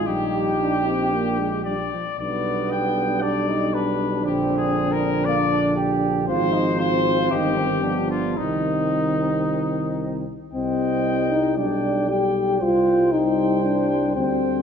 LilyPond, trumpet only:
\new Staff \with { instrumentName = "Trumpet" } { \time 4/4 \key bes \mixolydian \tempo 4 = 116 g'2. d''4 | \key c \minor d''4 g''4 d''4 b'4 | \tuplet 3/2 { g'4 aes'8~ aes'8 bes'4 } d''4 r4 | c''4 c''4 g'4. f'8 |
ees'2.~ ees'8 r8 | g''2 g''4 g''4 | g''4 g''2 g''4 | }